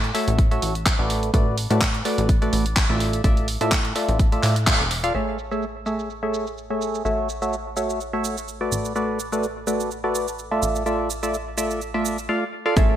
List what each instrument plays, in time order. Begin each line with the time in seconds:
Already playing: analog synth bass A2
0.04 closed hi-hat
0.15 synth stab A3 F#4 A4 C#5 E5, open hi-hat
0.28 analog synth bass A1, closed hi-hat
0.38 kick, closed hi-hat
0.51 synth stab A3 F#4 A4 C#5 E5, closed hi-hat
0.62 analog synth bass A1, open hi-hat
0.75 closed hi-hat
0.86 kick, clap, closed hi-hat
0.99 analog synth bass A1, synth stab A3 F#4 A4 B4 D5
1.10 open hi-hat
1.23 closed hi-hat
1.34 analog synth bass A1, synth stab A3 F#4 A4 B4 D5, kick, closed hi-hat
1.58 open hi-hat
1.70 analog synth bass A2, synth stab A3 F#4 A4 B4 D5, closed hi-hat
1.81 kick, clap, closed hi-hat
1.94 closed hi-hat
2.05 synth stab A3 F#4 A4 B4 D5, open hi-hat
2.18 analog synth bass A1, closed hi-hat
2.29 kick, closed hi-hat
2.42 synth stab A3 F#4 A4 B4 D5, closed hi-hat
2.53 analog synth bass A1, open hi-hat
2.66 closed hi-hat
2.77 kick, clap, closed hi-hat
2.90 analog synth bass A1, synth stab A3 F4 A4 D5 E5
3.00 open hi-hat
3.13 closed hi-hat
3.24 analog synth bass A1, synth stab A3 F4 A4 D5 E5, kick, closed hi-hat
3.37 closed hi-hat
3.48 open hi-hat
3.61 analog synth bass A2, synth stab A3 F4 A4 D5 E5, closed hi-hat
3.72 kick, clap, closed hi-hat
3.85 closed hi-hat
3.96 synth stab A3 F4 A4 D5 E5, open hi-hat
4.09 analog synth bass A1, closed hi-hat
4.19 kick, closed hi-hat
4.32 synth stab A3 F4 A4 D5 E5, closed hi-hat
4.43 analog synth bass A2, clap, open hi-hat
4.56 closed hi-hat
4.67 synth stab A3 F4 A4 D5 F5, kick, clap, closed hi-hat
4.80 analog synth bass E1
4.91 open hi-hat
5.04 synth stab F4 A4 D5 F5, closed hi-hat
5.15 analog synth bass A1, synth stab A3 G#4 A4 C#5 E5, shaker
5.39 shaker
5.51 synth stab A3 G#4 A4 C#5 E5, shaker
5.62 shaker
5.86 synth stab A3 G#4 A4 C#5 E5, shaker
5.99 shaker
6.10 shaker
6.23 synth stab A3 G#4 A4 C#5 E5
6.34 shaker
6.47 shaker
6.58 shaker
6.70 synth stab A3 G#4 A4 C#5 E5
6.82 shaker
6.95 shaker
7.05 analog synth bass A1, synth stab A3 F#4 A4 C#5 E5, shaker
7.29 shaker
7.42 synth stab A3 F#4 A4 C#5 E5, shaker
7.53 shaker
7.77 synth stab A3 F#4 A4 C#5 E5, shaker
7.90 shaker
8.01 shaker
8.13 synth stab A3 F#4 A4 C#5 E5
8.24 shaker
8.37 shaker
8.48 shaker
8.61 synth stab A3 F#4 A4 B4 D5
8.72 analog synth bass A1, shaker
8.85 shaker
8.96 synth stab A3 F#4 A4 B4 D5, shaker
9.20 shaker
9.32 synth stab A3 F#4 A4 B4 D5, shaker
9.43 shaker
9.67 synth stab A3 F#4 A4 B4 D5, shaker
9.80 shaker
9.91 shaker
10.04 synth stab A3 F#4 A4 B4 D5
10.15 shaker
10.28 shaker
10.39 shaker
10.51 synth stab A3 F4 A4 D5 E5
10.62 analog synth bass A1, shaker
10.76 shaker
10.86 synth stab A3 F4 A4 D5 E5, shaker
11.10 shaker
11.23 synth stab A3 F4 A4 D5 E5, shaker
11.34 shaker
11.58 synth stab A3 F4 A4 D5 E5, shaker
11.71 shaker
11.81 shaker
11.94 synth stab A3 F4 A4 D5 E5
12.05 shaker
12.18 shaker
12.29 synth stab A3 F4 A4 D5 F5
12.66 synth stab F4 A4 D5 F5
12.77 analog synth bass A1, synth stab A3 G#4 A4 C#5 E5, kick, closed hi-hat, shaker